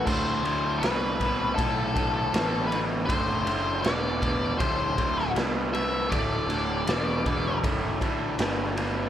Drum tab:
CC |x---------------|----------------|----------------|
RD |--x-x-x-x-x-x-x-|x-x-x-x-x-x-x-x-|x-x-x-x-x-x-x-x-|
SD |----o-------o---|----o------oo---|----o-------o---|
BD |o-----o-o-o-----|o-----o-o-o-----|o-----o-o-o-----|